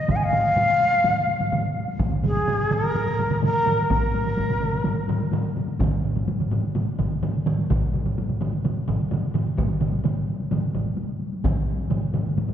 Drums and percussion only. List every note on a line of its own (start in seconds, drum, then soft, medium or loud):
0.08 taiko medium
0.08 taiko low-mid medium
0.08 taiko mid loud
0.08 taiko high medium
0.32 taiko low-mid loud
0.32 taiko mid medium
0.32 taiko high medium
0.44 taiko high soft
0.56 taiko low-mid medium
0.56 taiko mid medium
0.56 taiko high medium
0.81 taiko high medium
0.93 taiko high soft
1.04 taiko low-mid loud
1.04 taiko mid medium
1.04 taiko high medium
1.28 taiko high medium
1.40 taiko low-mid medium
1.40 taiko mid medium
1.40 taiko high medium
1.52 taiko low-mid loud
1.52 taiko mid medium
1.52 taiko high medium
1.76 taiko high medium
1.88 taiko high medium
1.99 taiko loud
1.99 taiko low-mid medium
1.99 taiko mid medium
1.99 taiko high medium
2.12 taiko low-mid medium
2.12 taiko mid medium
2.23 taiko low-mid medium
2.23 taiko mid medium
2.23 taiko high medium
2.37 taiko high medium
2.48 taiko low-mid loud
2.48 taiko mid medium
2.48 taiko high medium
2.71 taiko low-mid loud
2.71 taiko mid loud
2.71 taiko high medium
2.84 taiko high medium
2.95 taiko low-mid medium
2.95 taiko mid medium
2.95 taiko high medium
3.07 taiko low-mid medium
3.07 taiko mid medium
3.19 taiko low-mid medium
3.19 taiko mid medium
3.19 taiko high medium
3.30 taiko low-mid medium
3.30 taiko mid medium
3.30 taiko high medium
3.42 taiko low-mid medium
3.42 taiko mid loud
3.42 taiko high medium
3.66 taiko low-mid loud
3.66 taiko mid loud
3.66 taiko high medium
3.78 taiko high medium
3.90 taiko loud
3.90 taiko low-mid medium
3.90 taiko mid medium
3.90 taiko high medium
4.14 taiko low-mid medium
4.14 taiko mid medium
4.14 taiko high medium
4.26 taiko low-mid medium
4.26 taiko mid medium
4.26 taiko high medium
4.37 taiko medium
4.37 taiko low-mid medium
4.37 taiko mid medium
4.37 taiko high medium
4.49 taiko low-mid medium
4.49 taiko mid medium
4.61 taiko low-mid medium
4.61 taiko mid medium
4.61 taiko high medium
4.73 taiko low-mid medium
4.73 taiko mid medium
4.73 taiko high medium
4.84 taiko low-mid loud
4.84 taiko mid medium
4.84 taiko high medium
5.08 taiko low-mid loud
5.08 taiko mid loud
5.08 taiko high medium
5.20 taiko high medium
5.32 taiko low-mid loud
5.32 taiko mid loud
5.32 taiko high medium
5.56 taiko low-mid medium
5.56 taiko mid medium
5.56 taiko high medium
5.68 taiko high medium
5.79 taiko loud
5.79 taiko low-mid medium
5.79 taiko mid loud
5.79 taiko high medium
6.05 taiko low-mid medium
6.05 taiko mid medium
6.16 taiko low-mid medium
6.16 taiko mid medium
6.16 taiko high medium
6.27 taiko low-mid medium
6.27 taiko mid medium
6.27 taiko high medium
6.40 taiko low-mid medium
6.40 taiko mid medium
6.51 taiko low-mid loud
6.51 taiko mid medium
6.64 taiko high medium
6.75 taiko low-mid loud
6.75 taiko mid medium
6.75 taiko high medium
6.99 taiko medium
6.99 taiko low-mid loud
6.99 taiko mid loud
7.11 taiko high medium
7.23 taiko low-mid loud
7.23 taiko mid loud
7.23 taiko high medium
7.46 taiko low-mid medium
7.46 taiko mid loud
7.59 taiko high medium
7.70 taiko loud
7.70 taiko low-mid medium
7.70 taiko mid loud
7.70 taiko high medium
7.94 taiko low-mid medium
7.94 taiko mid medium
8.06 taiko low-mid medium
8.06 taiko mid medium
8.06 taiko high medium
8.18 taiko low-mid medium
8.18 taiko mid medium
8.18 taiko high medium
8.29 taiko low-mid medium
8.29 taiko mid medium
8.41 taiko low-mid loud
8.41 taiko mid medium
8.53 taiko high medium
8.65 taiko low-mid medium
8.65 taiko mid medium
8.65 taiko high medium
8.88 taiko medium
8.88 taiko low-mid loud
8.88 taiko mid medium
9.00 taiko high medium
9.11 taiko low-mid loud
9.11 taiko mid medium
9.11 taiko high medium
9.34 taiko low-mid loud
9.34 taiko mid loud
9.47 taiko high medium
9.57 taiko loud
9.57 taiko low-mid medium
9.57 taiko mid loud
9.57 taiko high medium
9.81 taiko low-mid loud
9.81 taiko mid medium
9.92 taiko high medium
10.04 taiko low-mid loud
10.04 taiko mid medium
10.04 taiko high medium
10.40 taiko high medium
10.51 taiko low-mid medium
10.51 taiko mid loud
10.51 taiko high medium
10.75 taiko medium
10.75 taiko low-mid medium
10.75 taiko mid medium
10.86 taiko high medium
10.97 taiko high medium
11.32 taiko high soft
11.44 taiko loud
11.44 taiko low-mid loud
11.44 taiko mid loud
11.44 taiko high medium
11.78 taiko high soft
11.90 taiko low-mid medium
11.90 taiko mid loud
11.90 taiko high medium
12.14 taiko low-mid loud
12.14 taiko mid medium
12.14 taiko high soft
12.26 taiko high medium
12.37 taiko medium
12.37 taiko low-mid medium
12.37 taiko mid medium
12.37 taiko high medium
12.49 taiko low-mid medium
12.49 taiko mid medium